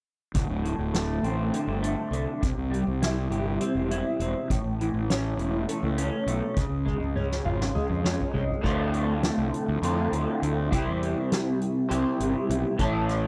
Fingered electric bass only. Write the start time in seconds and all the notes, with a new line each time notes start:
0.34 D1
0.49 D1
0.78 D1
1.23 A1
1.67 G1
2.11 C2
2.43 C2
2.56 C2
2.87 C2
3.30 G1
3.75 E1
4.20 E1
4.50 A1
4.64 A1
4.94 A1
5.37 E1
5.83 C#2
6.26 B1
6.57 C#2
6.69 C#2
7.00 C#2
7.45 G#1
7.89 F2
8.34 C2
8.64 D2
9.38 C2
9.68 D2
9.82 F2
10.12 D2
10.42 D2
10.72 C2
10.88 E2
11.91 C2
12.20 G1
12.49 B1
12.79 A1